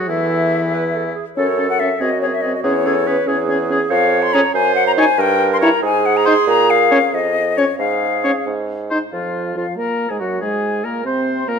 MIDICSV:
0, 0, Header, 1, 6, 480
1, 0, Start_track
1, 0, Tempo, 424929
1, 107, Time_signature, 6, 3, 24, 8
1, 6826, Tempo, 439883
1, 10666, Tempo, 427655
1, 12943, End_track
2, 0, Start_track
2, 0, Title_t, "Flute"
2, 0, Program_c, 0, 73
2, 85, Note_on_c, 0, 76, 85
2, 1282, Note_off_c, 0, 76, 0
2, 1539, Note_on_c, 0, 73, 89
2, 1878, Note_off_c, 0, 73, 0
2, 1911, Note_on_c, 0, 78, 100
2, 2029, Note_on_c, 0, 76, 87
2, 2045, Note_off_c, 0, 78, 0
2, 2275, Note_on_c, 0, 75, 96
2, 2292, Note_off_c, 0, 76, 0
2, 2494, Note_off_c, 0, 75, 0
2, 2501, Note_on_c, 0, 73, 85
2, 2557, Note_off_c, 0, 73, 0
2, 2625, Note_on_c, 0, 76, 85
2, 2726, Note_on_c, 0, 75, 82
2, 2743, Note_off_c, 0, 76, 0
2, 2876, Note_off_c, 0, 75, 0
2, 2883, Note_on_c, 0, 75, 68
2, 2951, Note_off_c, 0, 75, 0
2, 2966, Note_on_c, 0, 73, 94
2, 4166, Note_off_c, 0, 73, 0
2, 4402, Note_on_c, 0, 77, 99
2, 4773, Note_on_c, 0, 84, 117
2, 4790, Note_off_c, 0, 77, 0
2, 4894, Note_on_c, 0, 82, 95
2, 4911, Note_off_c, 0, 84, 0
2, 5123, Note_off_c, 0, 82, 0
2, 5130, Note_on_c, 0, 80, 113
2, 5363, Note_off_c, 0, 80, 0
2, 5369, Note_on_c, 0, 78, 110
2, 5490, Note_off_c, 0, 78, 0
2, 5501, Note_on_c, 0, 82, 114
2, 5554, Note_off_c, 0, 82, 0
2, 5628, Note_on_c, 0, 80, 115
2, 5885, Note_on_c, 0, 79, 121
2, 5902, Note_off_c, 0, 80, 0
2, 6234, Note_off_c, 0, 79, 0
2, 6248, Note_on_c, 0, 84, 113
2, 6297, Note_off_c, 0, 84, 0
2, 6353, Note_on_c, 0, 82, 101
2, 6585, Note_off_c, 0, 82, 0
2, 6605, Note_on_c, 0, 80, 110
2, 6841, Note_on_c, 0, 78, 108
2, 6857, Note_off_c, 0, 80, 0
2, 6963, Note_on_c, 0, 82, 109
2, 6979, Note_off_c, 0, 78, 0
2, 7059, Note_on_c, 0, 84, 111
2, 7075, Note_off_c, 0, 82, 0
2, 7296, Note_off_c, 0, 84, 0
2, 7312, Note_on_c, 0, 82, 114
2, 7546, Note_on_c, 0, 77, 106
2, 7562, Note_off_c, 0, 82, 0
2, 8029, Note_on_c, 0, 75, 106
2, 8045, Note_off_c, 0, 77, 0
2, 8505, Note_on_c, 0, 73, 96
2, 8521, Note_off_c, 0, 75, 0
2, 8723, Note_off_c, 0, 73, 0
2, 8730, Note_on_c, 0, 77, 98
2, 9450, Note_off_c, 0, 77, 0
2, 10190, Note_on_c, 0, 77, 50
2, 10633, Note_off_c, 0, 77, 0
2, 10653, Note_on_c, 0, 77, 44
2, 10897, Note_off_c, 0, 77, 0
2, 10912, Note_on_c, 0, 82, 55
2, 11278, Note_on_c, 0, 80, 45
2, 11294, Note_off_c, 0, 82, 0
2, 11376, Note_off_c, 0, 80, 0
2, 11383, Note_on_c, 0, 78, 51
2, 11613, Note_off_c, 0, 78, 0
2, 11619, Note_on_c, 0, 80, 56
2, 12116, Note_on_c, 0, 82, 49
2, 12133, Note_off_c, 0, 80, 0
2, 12337, Note_off_c, 0, 82, 0
2, 12344, Note_on_c, 0, 84, 60
2, 12811, Note_on_c, 0, 82, 69
2, 12828, Note_off_c, 0, 84, 0
2, 12943, Note_off_c, 0, 82, 0
2, 12943, End_track
3, 0, Start_track
3, 0, Title_t, "Clarinet"
3, 0, Program_c, 1, 71
3, 0, Note_on_c, 1, 68, 68
3, 107, Note_on_c, 1, 69, 75
3, 123, Note_off_c, 1, 68, 0
3, 825, Note_off_c, 1, 69, 0
3, 832, Note_on_c, 1, 71, 71
3, 941, Note_off_c, 1, 71, 0
3, 1067, Note_on_c, 1, 69, 63
3, 1178, Note_off_c, 1, 69, 0
3, 1302, Note_on_c, 1, 68, 65
3, 1413, Note_off_c, 1, 68, 0
3, 1552, Note_on_c, 1, 69, 82
3, 2253, Note_off_c, 1, 69, 0
3, 2274, Note_on_c, 1, 66, 74
3, 2990, Note_on_c, 1, 68, 82
3, 3007, Note_off_c, 1, 66, 0
3, 3229, Note_on_c, 1, 69, 87
3, 3246, Note_off_c, 1, 68, 0
3, 3466, Note_on_c, 1, 71, 84
3, 3483, Note_off_c, 1, 69, 0
3, 3697, Note_on_c, 1, 68, 87
3, 3714, Note_off_c, 1, 71, 0
3, 4413, Note_on_c, 1, 73, 109
3, 4430, Note_off_c, 1, 68, 0
3, 5132, Note_off_c, 1, 73, 0
3, 5139, Note_on_c, 1, 72, 112
3, 5857, Note_on_c, 1, 70, 98
3, 5874, Note_off_c, 1, 72, 0
3, 6573, Note_off_c, 1, 70, 0
3, 6580, Note_on_c, 1, 68, 115
3, 8377, Note_off_c, 1, 68, 0
3, 8746, Note_on_c, 1, 68, 76
3, 9792, Note_off_c, 1, 68, 0
3, 10199, Note_on_c, 1, 65, 51
3, 10637, Note_off_c, 1, 65, 0
3, 10673, Note_on_c, 1, 65, 46
3, 10781, Note_off_c, 1, 65, 0
3, 10910, Note_on_c, 1, 70, 53
3, 11265, Note_on_c, 1, 68, 42
3, 11282, Note_off_c, 1, 70, 0
3, 11391, Note_on_c, 1, 66, 47
3, 11407, Note_off_c, 1, 68, 0
3, 11625, Note_off_c, 1, 66, 0
3, 11632, Note_on_c, 1, 68, 54
3, 12106, Note_on_c, 1, 70, 50
3, 12123, Note_off_c, 1, 68, 0
3, 12339, Note_off_c, 1, 70, 0
3, 12346, Note_on_c, 1, 72, 59
3, 12824, Note_on_c, 1, 70, 58
3, 12841, Note_off_c, 1, 72, 0
3, 12943, Note_off_c, 1, 70, 0
3, 12943, End_track
4, 0, Start_track
4, 0, Title_t, "Oboe"
4, 0, Program_c, 2, 68
4, 95, Note_on_c, 2, 64, 76
4, 1287, Note_off_c, 2, 64, 0
4, 1552, Note_on_c, 2, 69, 61
4, 1660, Note_off_c, 2, 69, 0
4, 1781, Note_on_c, 2, 69, 59
4, 1891, Note_off_c, 2, 69, 0
4, 2025, Note_on_c, 2, 69, 54
4, 2134, Note_off_c, 2, 69, 0
4, 2259, Note_on_c, 2, 68, 66
4, 2369, Note_off_c, 2, 68, 0
4, 2511, Note_on_c, 2, 68, 68
4, 2618, Note_off_c, 2, 68, 0
4, 2742, Note_on_c, 2, 68, 58
4, 2851, Note_off_c, 2, 68, 0
4, 2971, Note_on_c, 2, 68, 67
4, 3082, Note_off_c, 2, 68, 0
4, 3225, Note_on_c, 2, 68, 75
4, 3332, Note_off_c, 2, 68, 0
4, 3462, Note_on_c, 2, 68, 61
4, 3569, Note_off_c, 2, 68, 0
4, 3701, Note_on_c, 2, 68, 62
4, 3808, Note_off_c, 2, 68, 0
4, 3945, Note_on_c, 2, 68, 64
4, 4051, Note_off_c, 2, 68, 0
4, 4190, Note_on_c, 2, 68, 75
4, 4295, Note_off_c, 2, 68, 0
4, 4906, Note_on_c, 2, 68, 77
4, 4986, Note_off_c, 2, 68, 0
4, 5623, Note_on_c, 2, 73, 91
4, 5705, Note_off_c, 2, 73, 0
4, 6339, Note_on_c, 2, 73, 87
4, 6425, Note_off_c, 2, 73, 0
4, 7054, Note_on_c, 2, 72, 91
4, 7139, Note_off_c, 2, 72, 0
4, 7768, Note_on_c, 2, 73, 81
4, 7852, Note_off_c, 2, 73, 0
4, 8496, Note_on_c, 2, 73, 78
4, 8579, Note_off_c, 2, 73, 0
4, 9220, Note_on_c, 2, 73, 74
4, 9306, Note_off_c, 2, 73, 0
4, 9945, Note_on_c, 2, 72, 75
4, 10031, Note_off_c, 2, 72, 0
4, 10187, Note_on_c, 2, 65, 49
4, 10631, Note_off_c, 2, 65, 0
4, 10674, Note_on_c, 2, 65, 40
4, 10782, Note_off_c, 2, 65, 0
4, 10909, Note_on_c, 2, 70, 49
4, 11259, Note_on_c, 2, 68, 33
4, 11275, Note_off_c, 2, 70, 0
4, 11364, Note_off_c, 2, 68, 0
4, 11371, Note_on_c, 2, 66, 46
4, 11603, Note_off_c, 2, 66, 0
4, 11610, Note_on_c, 2, 68, 56
4, 12103, Note_on_c, 2, 70, 47
4, 12119, Note_off_c, 2, 68, 0
4, 12337, Note_off_c, 2, 70, 0
4, 12344, Note_on_c, 2, 72, 53
4, 12823, Note_on_c, 2, 70, 57
4, 12840, Note_off_c, 2, 72, 0
4, 12943, Note_off_c, 2, 70, 0
4, 12943, End_track
5, 0, Start_track
5, 0, Title_t, "French horn"
5, 0, Program_c, 3, 60
5, 0, Note_on_c, 3, 54, 68
5, 96, Note_on_c, 3, 52, 85
5, 113, Note_off_c, 3, 54, 0
5, 1312, Note_off_c, 3, 52, 0
5, 1547, Note_on_c, 3, 61, 61
5, 1656, Note_off_c, 3, 61, 0
5, 1785, Note_on_c, 3, 61, 62
5, 1894, Note_off_c, 3, 61, 0
5, 2036, Note_on_c, 3, 61, 59
5, 2143, Note_off_c, 3, 61, 0
5, 2259, Note_on_c, 3, 60, 58
5, 2369, Note_off_c, 3, 60, 0
5, 2506, Note_on_c, 3, 60, 50
5, 2614, Note_off_c, 3, 60, 0
5, 2747, Note_on_c, 3, 60, 54
5, 2855, Note_off_c, 3, 60, 0
5, 2985, Note_on_c, 3, 61, 78
5, 3093, Note_off_c, 3, 61, 0
5, 3213, Note_on_c, 3, 61, 63
5, 3323, Note_off_c, 3, 61, 0
5, 3456, Note_on_c, 3, 61, 61
5, 3564, Note_off_c, 3, 61, 0
5, 3682, Note_on_c, 3, 61, 66
5, 3793, Note_off_c, 3, 61, 0
5, 3935, Note_on_c, 3, 61, 68
5, 4043, Note_off_c, 3, 61, 0
5, 4178, Note_on_c, 3, 61, 61
5, 4286, Note_off_c, 3, 61, 0
5, 4904, Note_on_c, 3, 61, 87
5, 4985, Note_off_c, 3, 61, 0
5, 5621, Note_on_c, 3, 63, 85
5, 5703, Note_off_c, 3, 63, 0
5, 6351, Note_on_c, 3, 64, 89
5, 6432, Note_off_c, 3, 64, 0
5, 7076, Note_on_c, 3, 63, 83
5, 7153, Note_off_c, 3, 63, 0
5, 7775, Note_on_c, 3, 61, 87
5, 7856, Note_off_c, 3, 61, 0
5, 8503, Note_on_c, 3, 61, 77
5, 8583, Note_off_c, 3, 61, 0
5, 9224, Note_on_c, 3, 61, 78
5, 9308, Note_off_c, 3, 61, 0
5, 9956, Note_on_c, 3, 63, 69
5, 10039, Note_off_c, 3, 63, 0
5, 10198, Note_on_c, 3, 53, 52
5, 10637, Note_off_c, 3, 53, 0
5, 10660, Note_on_c, 3, 53, 47
5, 10905, Note_on_c, 3, 58, 56
5, 10921, Note_off_c, 3, 53, 0
5, 11268, Note_off_c, 3, 58, 0
5, 11276, Note_on_c, 3, 56, 41
5, 11391, Note_on_c, 3, 54, 42
5, 11408, Note_off_c, 3, 56, 0
5, 11628, Note_off_c, 3, 54, 0
5, 11635, Note_on_c, 3, 56, 54
5, 12100, Note_on_c, 3, 58, 53
5, 12117, Note_off_c, 3, 56, 0
5, 12330, Note_off_c, 3, 58, 0
5, 12337, Note_on_c, 3, 60, 58
5, 12812, Note_off_c, 3, 60, 0
5, 12818, Note_on_c, 3, 58, 55
5, 12929, Note_off_c, 3, 58, 0
5, 12943, End_track
6, 0, Start_track
6, 0, Title_t, "Bassoon"
6, 0, Program_c, 4, 70
6, 104, Note_on_c, 4, 40, 76
6, 1291, Note_off_c, 4, 40, 0
6, 1553, Note_on_c, 4, 42, 87
6, 2184, Note_off_c, 4, 42, 0
6, 2260, Note_on_c, 4, 42, 66
6, 2899, Note_off_c, 4, 42, 0
6, 2980, Note_on_c, 4, 40, 89
6, 3613, Note_off_c, 4, 40, 0
6, 3700, Note_on_c, 4, 40, 80
6, 4332, Note_off_c, 4, 40, 0
6, 4414, Note_on_c, 4, 41, 109
6, 5013, Note_off_c, 4, 41, 0
6, 5129, Note_on_c, 4, 42, 86
6, 5734, Note_off_c, 4, 42, 0
6, 5853, Note_on_c, 4, 43, 108
6, 6460, Note_off_c, 4, 43, 0
6, 6579, Note_on_c, 4, 44, 96
6, 7177, Note_off_c, 4, 44, 0
6, 7295, Note_on_c, 4, 46, 112
6, 7887, Note_off_c, 4, 46, 0
6, 8009, Note_on_c, 4, 41, 85
6, 8611, Note_off_c, 4, 41, 0
6, 8733, Note_on_c, 4, 44, 92
6, 9344, Note_off_c, 4, 44, 0
6, 9465, Note_on_c, 4, 44, 74
6, 10071, Note_off_c, 4, 44, 0
6, 10194, Note_on_c, 4, 41, 55
6, 10635, Note_off_c, 4, 41, 0
6, 10677, Note_on_c, 4, 41, 46
6, 10784, Note_off_c, 4, 41, 0
6, 10915, Note_on_c, 4, 46, 43
6, 11266, Note_off_c, 4, 46, 0
6, 11274, Note_on_c, 4, 44, 36
6, 11382, Note_off_c, 4, 44, 0
6, 11389, Note_on_c, 4, 42, 51
6, 11627, Note_on_c, 4, 44, 58
6, 11644, Note_off_c, 4, 42, 0
6, 12098, Note_off_c, 4, 44, 0
6, 12105, Note_on_c, 4, 46, 50
6, 12340, Note_on_c, 4, 48, 55
6, 12356, Note_off_c, 4, 46, 0
6, 12818, Note_off_c, 4, 48, 0
6, 12824, Note_on_c, 4, 46, 60
6, 12943, Note_off_c, 4, 46, 0
6, 12943, End_track
0, 0, End_of_file